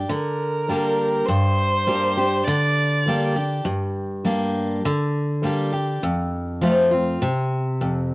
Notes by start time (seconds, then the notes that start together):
0.09 D3 A#4
0.69 G3 A#3 D4 G4
1.26 G2 C5
1.87 G3 A#3 D4 G4
2.17 D4 G4
2.45 D3 D5
3.07 G3 A#3 D4 G4
3.36 D4 G4
3.65 G2
4.25 G3 A#3 D4 G4
4.85 D3
5.43 G3 A#3 D4 G4
5.73 D4 G4
6.03 F2
6.61 F3 A3 C4 F4
6.91 C4 F4
7.22 C3
7.81 F2